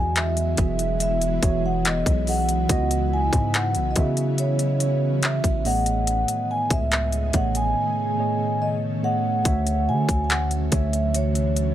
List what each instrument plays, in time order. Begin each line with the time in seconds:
Already playing: 808-style bass E2, tine electric piano E3 B3 F#4 G#4 D#5, ambient pad E3 F#3 G#3 B3 E4, vibraphone G#5
0.16 vibraphone E5, clap, closed hi-hat
0.37 closed hi-hat
0.57 808-style bass E1, tine electric piano E3 B3 F#4 G#4 E5, kick, closed hi-hat
0.79 closed hi-hat
1.00 vibraphone E5, closed hi-hat
1.22 closed hi-hat
1.41 808-style bass E1, tine electric piano E3 B3 F#4 G#4 C#5, kick, closed hi-hat
1.66 vibraphone F#5
1.85 vibraphone D#5, clap, closed hi-hat
2.06 808-style bass B1, kick, closed hi-hat
2.26 tine electric piano E3 B3 F#4 G#4 D#5, vibraphone F#5, open hi-hat
2.49 closed hi-hat
2.68 808-style bass C#2, tine electric piano C#3 B3 E4 F#4 D#5, ambient pad C#4, kick, closed hi-hat
2.91 closed hi-hat
3.14 vibraphone G#5
3.33 808-style bass G#2, kick, closed hi-hat
3.54 vibraphone F#5, clap, closed hi-hat
3.75 808-style bass B1, closed hi-hat
3.91 vibraphone D#5
3.95 tine electric piano C#3 B3 E4 F#4 E5, 808-style bass C#3, vibraphone E5, kick, closed hi-hat
4.17 closed hi-hat
4.38 vibraphone C#5, closed hi-hat
4.59 closed hi-hat
4.80 closed hi-hat
5.23 vibraphone E5, clap, closed hi-hat
5.44 808-style bass A1, kick, closed hi-hat
5.64 tine electric piano A2 A3 B3 G#4 C#5 D#5, ambient pad C#3 D#3 A3 G#4, vibraphone F#5, open hi-hat
5.86 closed hi-hat
6.07 closed hi-hat
6.28 closed hi-hat
6.51 vibraphone G#5
6.70 808-style bass C#2, vibraphone E5, kick, closed hi-hat
6.92 clap, closed hi-hat
7.12 closed hi-hat
7.33 808-style bass A1, tine electric piano A2 A3 B3 G#4 C#5 D#5, ambient pad C#4, vibraphone F#5, kick, closed hi-hat
7.55 vibraphone G#5, closed hi-hat
8.17 tine electric piano A2 A3 B3 G#4 C#5 D#5
8.62 vibraphone D#5
9.02 tine electric piano A2 A3 B3 G#4 C#5 D#5, vibraphone F#5
9.44 808-style bass D2, tine electric piano D3 A3 F#4 C#5 E5, ambient pad D3 E3 F#3, kick, closed hi-hat
9.67 closed hi-hat
9.88 808-style bass D3, vibraphone G#5
10.09 808-style bass D2, kick, closed hi-hat
10.24 vibraphone G#5
10.30 vibraphone F#5, clap, closed hi-hat
10.51 closed hi-hat
10.71 808-style bass D2, tine electric piano D3 A3 F#4 C#5 E5, vibraphone E5, kick, closed hi-hat
10.93 closed hi-hat
11.14 vibraphone C#5, closed hi-hat
11.35 closed hi-hat
11.56 closed hi-hat